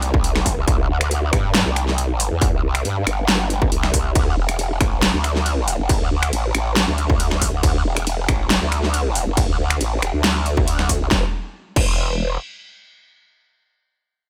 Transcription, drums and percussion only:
0.02 closed hi-hat
0.14 kick
0.24 closed hi-hat
0.36 finger snap, snare
0.46 kick, open hi-hat
0.68 kick, closed hi-hat
1.01 finger snap, closed hi-hat
1.11 closed hi-hat
1.33 finger snap, kick, closed hi-hat
1.55 snare, closed hi-hat
1.76 finger snap, closed hi-hat
1.88 snare
1.98 closed hi-hat
2.20 open hi-hat
2.42 kick, closed hi-hat
2.75 finger snap, closed hi-hat
2.85 closed hi-hat
3.07 finger snap, closed hi-hat
3.28 snare, closed hi-hat
3.50 closed hi-hat
3.62 kick
3.72 closed hi-hat
3.83 finger snap, snare
3.94 kick, open hi-hat
4.15 kick, closed hi-hat, ride
4.49 finger snap, closed hi-hat
4.59 closed hi-hat, ride
4.81 finger snap, kick, closed hi-hat
5.02 snare, closed hi-hat, ride
5.24 finger snap, closed hi-hat
5.36 snare
5.46 closed hi-hat, ride
5.68 open hi-hat
5.89 kick, closed hi-hat, ride
6.23 finger snap, closed hi-hat
6.33 closed hi-hat, ride
6.55 finger snap, closed hi-hat
6.76 snare, closed hi-hat, ride
6.98 closed hi-hat
7.10 kick
7.20 closed hi-hat, ride
7.31 finger snap, snare
7.42 kick, open hi-hat
7.63 kick, closed hi-hat, ride
7.97 finger snap, closed hi-hat
8.07 closed hi-hat, ride
8.29 finger snap, kick, closed hi-hat
8.50 snare, closed hi-hat, ride
8.72 finger snap, closed hi-hat
8.83 snare
8.94 closed hi-hat, ride
9.15 open hi-hat
9.37 kick, closed hi-hat, ride
9.70 finger snap, closed hi-hat
9.81 closed hi-hat, ride
10.02 finger snap, closed hi-hat
10.24 snare, closed hi-hat, ride
10.46 closed hi-hat
10.57 kick
10.68 closed hi-hat, ride
10.79 finger snap, snare
10.89 kick, open hi-hat
11.11 kick, snare
11.76 kick, crash

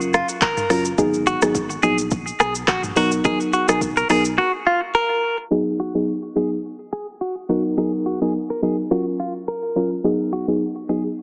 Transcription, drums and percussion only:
0.01 shaker
0.13 cross-stick, shaker
0.29 shaker
0.41 kick, clap, shaker
0.57 mid tom, shaker
0.70 cross-stick, open hi-hat, shaker
0.85 shaker
0.98 kick, shaker
1.14 shaker
1.27 shaker
1.42 cross-stick, shaker
1.55 kick, shaker
1.70 shaker
1.83 shaker
1.98 shaker
2.11 kick, shaker
2.27 shaker
2.40 cross-stick, shaker
2.55 shaker
2.68 kick, cross-stick, clap, shaker
2.83 mid tom, shaker
2.96 open hi-hat, shaker
3.12 shaker
3.25 kick, shaker
3.40 shaker
3.53 shaker
3.69 cross-stick, shaker
3.81 kick, shaker
3.97 shaker
4.10 cross-stick, open hi-hat, shaker
4.25 shaker

